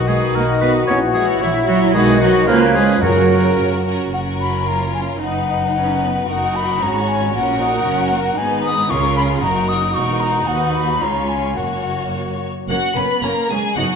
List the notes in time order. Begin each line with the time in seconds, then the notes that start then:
Already playing: B1 D#3 D#4 F#4
0.08 G#3 D#4 F#4 G#4 B4
0.35 B1 A#3 F#4 A#4 D#5
0.61 B3 D#4 F#4 B4
0.87 A#1 E3 C#4 E4 F#4 C#5 F#5
1.14 G#3 E4 F#4 G#4 C#5
1.41 A#1 E3 F#3 E4 F#4 E5
1.67 F#3 E4 F#4 C#5
1.93 B1 D#3 G#3 D#4 F#4 G#4 B4 D#5
2.20 F#3 D#4 F#4 B4
2.47 C#2 F3 A#3 C#4 F4 A#4 B4 C#5
2.74 G#3 C#4 F4 G#4 B4
3.01 F#2 C#3 F#3 C#4 F#4 A#4
3.30 C#4 F#4 A#4
3.58 F#2
3.85 C#4 F#4 A#4
4.13 F#1 F#2 C#4 F#4 A#4 F#5
4.41 B5
4.68 F4 A#5
4.95 G#5
5.20 F#1 F#2 D#4 B4 F#5
5.48 D#4
5.74 C#4 B4
6.02 B3
6.28 F#1 F#2 D#4 F#4 A#4 F#5
6.56 B5
6.81 G#1 G#2 C#4 C#5 A#5
7.08 G#5
7.33 A#1 A#2 C#4 F#4 A#4 F#5
7.60 D#4
7.85 F#1 F#2 C#4
8.12 A#3
8.38 G#1 G#2 B3 D#4 B4 G#5
8.65 D#6
8.90 C#2 C#3 C#4 F4 A#4 C#6
9.17 B5
9.42 F#1 F#2 D#4 F#4 A#4 A#5
9.69 D#6
9.95 E1 E2 F#4 A#4 C#6
10.20 A#5
10.47 D#2 B4 F#5
10.74 B5
11.02 C#2 C#4 F4 C#5 A#5
11.29 G#5
11.57 F#1 F#2 A#3 F#4 C#5 F#5
12.69 F#1 F#3 A#3 C#4 F#4 F#5
12.96 F#1 A#3 B3 C#4 B4 B5
13.23 F#1 A#3 C#4 A#4 A#5
13.49 F#1 G#3 A#3 C#4 G#4 G#5
13.76 F#1 F#3 B3 D#4 F#4 F#5